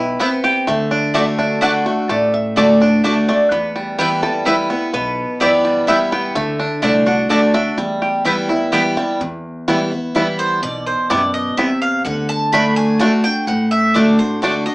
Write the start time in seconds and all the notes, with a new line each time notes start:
Already playing: B1 B2 E4 G4 B4
0.20 B3 C4 E4 B4 G5
0.44 G4 G5
0.67 D2 D3 A3 E5
0.91 D4
1.14 D3 A3 D4 F#4 D5 A5
1.39 D4 E5
1.61 D3 A3 D4 F#4 D5 F#5 A5
1.86 A3 D4 F#4
2.09 A1 A2 A3 D5
2.34 E5
2.56 D3 A3 D4 F#4 D5 A5
2.80 D4 F#4
3.04 D3 A3 D4 F#4 D5 A5
3.28 A3 D4 F#4 D5
3.51 E2 B3 B4
3.76 G3
3.98 E3 G3 B3 E4 G4 B4 G5
4.22 G3 B3 E4 A4
4.45 E3 G3 B3 E4 B4 G5
4.70 B3 E4
4.93 B1 B2 B3 B4
5.40 F#2 E3 B3 E4 G4 B4 D5 G5
5.65 G3
5.87 E2 E3 G3 B3 E4 B4 E5 G5
6.12 B3 G5
6.35 D2 D3 A3 E5
6.59 D4
6.82 C2 D3 A3 D4 F#4 D5 A5
7.06 D4 F#4 F#5
7.29 D2 D3 A3 D4 F#4 D5 A5
7.54 D4 F#4 E5
7.77 E2 G3
8.02 G4
8.25 E3 G3 B3 E4 B4 G5
8.49 B3 E4
8.72 E3 G3 B3 E4 G4 B4 G5
8.97 G3 B3 E4
9.20 E2
9.68 E3 G3 B3 E4
9.92 B3 E4
10.15 E3 G3 B3 E4 B4
10.39 C5
10.62 B1 B2 D5
10.86 C5
11.10 F#2 B2 G3 B3 E4 D5
11.34 D#5
11.57 E2 C3 G3 B3 E4 E5
11.82 F5
12.05 D2 D3 F#5
12.29 A5
12.52 D3 A3 D4 F#4 B5
12.76 G#5
12.99 D3 A3 D4 F#4 A5
13.24 D4 F#4 G5
13.47 A1 A2 F#5
13.71 E5
13.94 D3 A3 D4 F#4 D5
14.19 D4 F#4 C5
14.42 D3 A3 D4 F#4 D5
14.66 D4 F#4 D#5